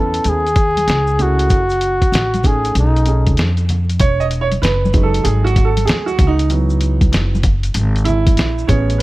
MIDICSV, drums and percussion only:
0, 0, Header, 1, 2, 480
1, 0, Start_track
1, 0, Key_signature, 4, "major"
1, 0, Tempo, 625000
1, 1154, Time_signature, 4, 2, 24, 8
1, 6930, End_track
2, 0, Start_track
2, 0, Title_t, "Drums"
2, 107, Note_on_c, 9, 42, 53
2, 110, Note_on_c, 9, 82, 45
2, 183, Note_off_c, 9, 42, 0
2, 187, Note_off_c, 9, 82, 0
2, 187, Note_on_c, 9, 42, 80
2, 196, Note_on_c, 9, 63, 40
2, 196, Note_on_c, 9, 82, 56
2, 264, Note_off_c, 9, 42, 0
2, 273, Note_off_c, 9, 63, 0
2, 273, Note_off_c, 9, 82, 0
2, 357, Note_on_c, 9, 42, 28
2, 358, Note_on_c, 9, 82, 38
2, 428, Note_off_c, 9, 42, 0
2, 428, Note_on_c, 9, 42, 62
2, 429, Note_on_c, 9, 36, 93
2, 435, Note_off_c, 9, 82, 0
2, 436, Note_on_c, 9, 82, 42
2, 505, Note_off_c, 9, 42, 0
2, 506, Note_off_c, 9, 36, 0
2, 512, Note_off_c, 9, 82, 0
2, 592, Note_on_c, 9, 42, 53
2, 593, Note_on_c, 9, 63, 56
2, 593, Note_on_c, 9, 82, 43
2, 669, Note_off_c, 9, 42, 0
2, 670, Note_off_c, 9, 63, 0
2, 670, Note_off_c, 9, 82, 0
2, 674, Note_on_c, 9, 42, 79
2, 679, Note_on_c, 9, 82, 53
2, 689, Note_on_c, 9, 38, 96
2, 750, Note_off_c, 9, 42, 0
2, 756, Note_off_c, 9, 82, 0
2, 765, Note_off_c, 9, 38, 0
2, 824, Note_on_c, 9, 82, 45
2, 901, Note_off_c, 9, 82, 0
2, 914, Note_on_c, 9, 42, 58
2, 916, Note_on_c, 9, 64, 62
2, 916, Note_on_c, 9, 82, 43
2, 991, Note_off_c, 9, 42, 0
2, 993, Note_off_c, 9, 64, 0
2, 993, Note_off_c, 9, 82, 0
2, 1069, Note_on_c, 9, 82, 40
2, 1070, Note_on_c, 9, 42, 52
2, 1146, Note_off_c, 9, 42, 0
2, 1146, Note_off_c, 9, 82, 0
2, 1150, Note_on_c, 9, 82, 56
2, 1154, Note_on_c, 9, 36, 96
2, 1154, Note_on_c, 9, 42, 82
2, 1227, Note_off_c, 9, 82, 0
2, 1231, Note_off_c, 9, 36, 0
2, 1231, Note_off_c, 9, 42, 0
2, 1304, Note_on_c, 9, 82, 43
2, 1318, Note_on_c, 9, 42, 32
2, 1381, Note_off_c, 9, 82, 0
2, 1390, Note_off_c, 9, 42, 0
2, 1390, Note_on_c, 9, 42, 57
2, 1396, Note_on_c, 9, 82, 42
2, 1467, Note_off_c, 9, 42, 0
2, 1473, Note_off_c, 9, 82, 0
2, 1548, Note_on_c, 9, 36, 71
2, 1549, Note_on_c, 9, 82, 35
2, 1550, Note_on_c, 9, 42, 42
2, 1625, Note_off_c, 9, 36, 0
2, 1626, Note_off_c, 9, 82, 0
2, 1627, Note_off_c, 9, 42, 0
2, 1637, Note_on_c, 9, 82, 61
2, 1640, Note_on_c, 9, 42, 78
2, 1652, Note_on_c, 9, 38, 98
2, 1714, Note_off_c, 9, 82, 0
2, 1717, Note_off_c, 9, 42, 0
2, 1729, Note_off_c, 9, 38, 0
2, 1795, Note_on_c, 9, 42, 31
2, 1800, Note_on_c, 9, 63, 64
2, 1800, Note_on_c, 9, 82, 46
2, 1869, Note_off_c, 9, 82, 0
2, 1869, Note_on_c, 9, 64, 58
2, 1869, Note_on_c, 9, 82, 42
2, 1872, Note_off_c, 9, 42, 0
2, 1875, Note_on_c, 9, 36, 78
2, 1877, Note_off_c, 9, 63, 0
2, 1878, Note_on_c, 9, 42, 65
2, 1946, Note_off_c, 9, 64, 0
2, 1946, Note_off_c, 9, 82, 0
2, 1952, Note_off_c, 9, 36, 0
2, 1955, Note_off_c, 9, 42, 0
2, 2033, Note_on_c, 9, 82, 44
2, 2035, Note_on_c, 9, 42, 51
2, 2110, Note_off_c, 9, 82, 0
2, 2111, Note_off_c, 9, 42, 0
2, 2114, Note_on_c, 9, 42, 84
2, 2121, Note_on_c, 9, 63, 44
2, 2121, Note_on_c, 9, 82, 59
2, 2191, Note_off_c, 9, 42, 0
2, 2198, Note_off_c, 9, 63, 0
2, 2198, Note_off_c, 9, 82, 0
2, 2275, Note_on_c, 9, 82, 37
2, 2277, Note_on_c, 9, 42, 29
2, 2347, Note_off_c, 9, 42, 0
2, 2347, Note_on_c, 9, 42, 63
2, 2352, Note_off_c, 9, 82, 0
2, 2358, Note_on_c, 9, 82, 44
2, 2424, Note_off_c, 9, 42, 0
2, 2435, Note_off_c, 9, 82, 0
2, 2508, Note_on_c, 9, 42, 58
2, 2511, Note_on_c, 9, 36, 77
2, 2511, Note_on_c, 9, 63, 54
2, 2511, Note_on_c, 9, 82, 40
2, 2585, Note_off_c, 9, 42, 0
2, 2588, Note_off_c, 9, 36, 0
2, 2588, Note_off_c, 9, 63, 0
2, 2588, Note_off_c, 9, 82, 0
2, 2590, Note_on_c, 9, 42, 85
2, 2596, Note_on_c, 9, 82, 55
2, 2604, Note_on_c, 9, 38, 111
2, 2666, Note_off_c, 9, 42, 0
2, 2673, Note_off_c, 9, 82, 0
2, 2681, Note_off_c, 9, 38, 0
2, 2742, Note_on_c, 9, 42, 31
2, 2745, Note_on_c, 9, 82, 41
2, 2819, Note_off_c, 9, 42, 0
2, 2821, Note_off_c, 9, 82, 0
2, 2833, Note_on_c, 9, 42, 58
2, 2837, Note_on_c, 9, 64, 56
2, 2837, Note_on_c, 9, 82, 43
2, 2910, Note_off_c, 9, 42, 0
2, 2914, Note_off_c, 9, 64, 0
2, 2914, Note_off_c, 9, 82, 0
2, 2991, Note_on_c, 9, 42, 55
2, 2996, Note_on_c, 9, 82, 43
2, 3068, Note_off_c, 9, 42, 0
2, 3068, Note_on_c, 9, 42, 81
2, 3073, Note_off_c, 9, 82, 0
2, 3073, Note_on_c, 9, 36, 112
2, 3081, Note_on_c, 9, 82, 55
2, 3145, Note_off_c, 9, 42, 0
2, 3149, Note_off_c, 9, 36, 0
2, 3158, Note_off_c, 9, 82, 0
2, 3230, Note_on_c, 9, 82, 41
2, 3307, Note_off_c, 9, 82, 0
2, 3309, Note_on_c, 9, 42, 65
2, 3325, Note_on_c, 9, 82, 44
2, 3385, Note_off_c, 9, 42, 0
2, 3402, Note_off_c, 9, 82, 0
2, 3468, Note_on_c, 9, 42, 47
2, 3470, Note_on_c, 9, 63, 55
2, 3470, Note_on_c, 9, 82, 38
2, 3545, Note_off_c, 9, 42, 0
2, 3547, Note_off_c, 9, 63, 0
2, 3547, Note_off_c, 9, 82, 0
2, 3558, Note_on_c, 9, 42, 92
2, 3561, Note_on_c, 9, 82, 61
2, 3569, Note_on_c, 9, 38, 117
2, 3635, Note_off_c, 9, 42, 0
2, 3638, Note_off_c, 9, 82, 0
2, 3646, Note_off_c, 9, 38, 0
2, 3728, Note_on_c, 9, 63, 66
2, 3728, Note_on_c, 9, 82, 46
2, 3789, Note_off_c, 9, 82, 0
2, 3789, Note_on_c, 9, 64, 69
2, 3789, Note_on_c, 9, 82, 49
2, 3792, Note_on_c, 9, 36, 84
2, 3793, Note_on_c, 9, 42, 67
2, 3805, Note_off_c, 9, 63, 0
2, 3866, Note_off_c, 9, 64, 0
2, 3866, Note_off_c, 9, 82, 0
2, 3869, Note_off_c, 9, 36, 0
2, 3870, Note_off_c, 9, 42, 0
2, 3950, Note_on_c, 9, 42, 51
2, 3951, Note_on_c, 9, 82, 44
2, 4027, Note_off_c, 9, 42, 0
2, 4028, Note_off_c, 9, 82, 0
2, 4030, Note_on_c, 9, 42, 96
2, 4040, Note_on_c, 9, 63, 41
2, 4040, Note_on_c, 9, 82, 57
2, 4107, Note_off_c, 9, 42, 0
2, 4117, Note_off_c, 9, 63, 0
2, 4117, Note_off_c, 9, 82, 0
2, 4199, Note_on_c, 9, 42, 34
2, 4201, Note_on_c, 9, 82, 40
2, 4270, Note_on_c, 9, 36, 87
2, 4271, Note_off_c, 9, 42, 0
2, 4271, Note_on_c, 9, 42, 72
2, 4278, Note_off_c, 9, 82, 0
2, 4280, Note_on_c, 9, 64, 63
2, 4280, Note_on_c, 9, 82, 46
2, 4346, Note_off_c, 9, 36, 0
2, 4348, Note_off_c, 9, 42, 0
2, 4357, Note_off_c, 9, 64, 0
2, 4357, Note_off_c, 9, 82, 0
2, 4431, Note_on_c, 9, 42, 60
2, 4433, Note_on_c, 9, 63, 64
2, 4433, Note_on_c, 9, 82, 50
2, 4508, Note_off_c, 9, 42, 0
2, 4510, Note_off_c, 9, 63, 0
2, 4510, Note_off_c, 9, 82, 0
2, 4512, Note_on_c, 9, 42, 93
2, 4518, Note_on_c, 9, 82, 60
2, 4527, Note_on_c, 9, 38, 113
2, 4589, Note_off_c, 9, 42, 0
2, 4595, Note_off_c, 9, 82, 0
2, 4603, Note_off_c, 9, 38, 0
2, 4668, Note_on_c, 9, 82, 48
2, 4745, Note_off_c, 9, 82, 0
2, 4752, Note_on_c, 9, 36, 101
2, 4752, Note_on_c, 9, 42, 64
2, 4758, Note_on_c, 9, 64, 67
2, 4758, Note_on_c, 9, 82, 46
2, 4829, Note_off_c, 9, 36, 0
2, 4829, Note_off_c, 9, 42, 0
2, 4835, Note_off_c, 9, 64, 0
2, 4835, Note_off_c, 9, 82, 0
2, 4909, Note_on_c, 9, 82, 44
2, 4910, Note_on_c, 9, 42, 61
2, 4985, Note_off_c, 9, 82, 0
2, 4987, Note_off_c, 9, 42, 0
2, 4991, Note_on_c, 9, 42, 86
2, 4991, Note_on_c, 9, 82, 55
2, 5068, Note_off_c, 9, 42, 0
2, 5068, Note_off_c, 9, 82, 0
2, 5145, Note_on_c, 9, 82, 46
2, 5222, Note_off_c, 9, 82, 0
2, 5227, Note_on_c, 9, 42, 70
2, 5245, Note_on_c, 9, 82, 43
2, 5304, Note_off_c, 9, 42, 0
2, 5322, Note_off_c, 9, 82, 0
2, 5384, Note_on_c, 9, 36, 81
2, 5385, Note_on_c, 9, 42, 46
2, 5389, Note_on_c, 9, 63, 56
2, 5389, Note_on_c, 9, 82, 36
2, 5461, Note_off_c, 9, 36, 0
2, 5462, Note_off_c, 9, 42, 0
2, 5466, Note_off_c, 9, 63, 0
2, 5466, Note_off_c, 9, 82, 0
2, 5474, Note_on_c, 9, 42, 91
2, 5478, Note_on_c, 9, 82, 64
2, 5485, Note_on_c, 9, 38, 100
2, 5551, Note_off_c, 9, 42, 0
2, 5555, Note_off_c, 9, 82, 0
2, 5562, Note_off_c, 9, 38, 0
2, 5645, Note_on_c, 9, 63, 66
2, 5645, Note_on_c, 9, 82, 47
2, 5709, Note_on_c, 9, 42, 67
2, 5710, Note_on_c, 9, 36, 87
2, 5712, Note_off_c, 9, 82, 0
2, 5712, Note_on_c, 9, 64, 67
2, 5712, Note_on_c, 9, 82, 49
2, 5722, Note_off_c, 9, 63, 0
2, 5785, Note_off_c, 9, 42, 0
2, 5787, Note_off_c, 9, 36, 0
2, 5788, Note_off_c, 9, 64, 0
2, 5788, Note_off_c, 9, 82, 0
2, 5863, Note_on_c, 9, 42, 60
2, 5874, Note_on_c, 9, 82, 47
2, 5939, Note_off_c, 9, 42, 0
2, 5947, Note_on_c, 9, 42, 94
2, 5950, Note_off_c, 9, 82, 0
2, 5966, Note_on_c, 9, 63, 46
2, 5966, Note_on_c, 9, 82, 59
2, 6024, Note_off_c, 9, 42, 0
2, 6043, Note_off_c, 9, 63, 0
2, 6043, Note_off_c, 9, 82, 0
2, 6111, Note_on_c, 9, 42, 33
2, 6124, Note_on_c, 9, 82, 42
2, 6186, Note_off_c, 9, 42, 0
2, 6186, Note_on_c, 9, 42, 67
2, 6200, Note_off_c, 9, 82, 0
2, 6207, Note_on_c, 9, 64, 62
2, 6207, Note_on_c, 9, 82, 47
2, 6262, Note_off_c, 9, 42, 0
2, 6284, Note_off_c, 9, 64, 0
2, 6284, Note_off_c, 9, 82, 0
2, 6349, Note_on_c, 9, 36, 81
2, 6349, Note_on_c, 9, 42, 62
2, 6354, Note_on_c, 9, 63, 59
2, 6354, Note_on_c, 9, 82, 46
2, 6425, Note_off_c, 9, 36, 0
2, 6426, Note_off_c, 9, 42, 0
2, 6430, Note_on_c, 9, 42, 78
2, 6431, Note_off_c, 9, 63, 0
2, 6431, Note_off_c, 9, 82, 0
2, 6439, Note_on_c, 9, 82, 65
2, 6444, Note_on_c, 9, 38, 112
2, 6506, Note_off_c, 9, 42, 0
2, 6516, Note_off_c, 9, 82, 0
2, 6521, Note_off_c, 9, 38, 0
2, 6593, Note_on_c, 9, 82, 48
2, 6669, Note_off_c, 9, 82, 0
2, 6673, Note_on_c, 9, 36, 90
2, 6675, Note_on_c, 9, 42, 69
2, 6681, Note_on_c, 9, 64, 59
2, 6681, Note_on_c, 9, 82, 47
2, 6749, Note_off_c, 9, 36, 0
2, 6752, Note_off_c, 9, 42, 0
2, 6757, Note_off_c, 9, 64, 0
2, 6757, Note_off_c, 9, 82, 0
2, 6834, Note_on_c, 9, 42, 54
2, 6835, Note_on_c, 9, 82, 45
2, 6910, Note_off_c, 9, 42, 0
2, 6912, Note_off_c, 9, 82, 0
2, 6930, End_track
0, 0, End_of_file